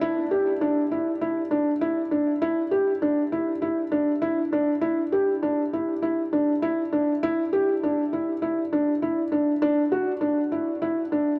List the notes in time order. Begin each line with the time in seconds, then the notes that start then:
0.01 E4
0.31 G4
0.61 D4
0.91 E4
1.21 E4
1.51 D4
1.81 E4
2.11 D4
2.42 E4
2.71 G4
3.02 D4
3.32 E4
3.62 E4
3.92 D4
4.22 E4
4.53 D4
4.81 E4
5.12 G4
5.43 D4
5.73 E4
6.02 E4
6.33 D4
6.62 E4
6.93 D4
7.23 E4
7.53 G4
7.83 D4
8.13 E4
8.42 E4
8.73 D4
9.02 E4
9.32 D4
9.62 D4
9.92 F#4
10.21 D4
10.52 E4
10.82 E4
11.12 D4